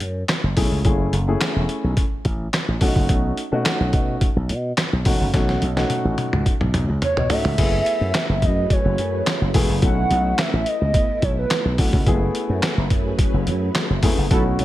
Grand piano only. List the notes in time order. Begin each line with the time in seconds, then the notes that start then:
0.56 A3 C#4 E4 G#4
0.85 A3 C#4 E4 G#4
1.28 A3 C#4 E4 G#4
2.81 A3 C#4 D4 F#4
2.88 D#4
3.52 A3 C#4 D#4 F#4
5.06 A3 C#4 D#4 F#4
5.33 A3 C#4 D#4 F#4
5.76 A3 C#4 D#4 F#4
7.30 A3 C#4 D#4 F#4
7.58 A3 B3 E4 G#4
9.54 A3 B3 E4 G#4
9.82 A3 C#4 E4 F#4
11.79 A3 C#4 E4 F#4
12.07 G#3 B3 E4 G#4
12.13 A3
14.03 A3 B3 E4 G#4
14.30 A3 C#4 E4 F#4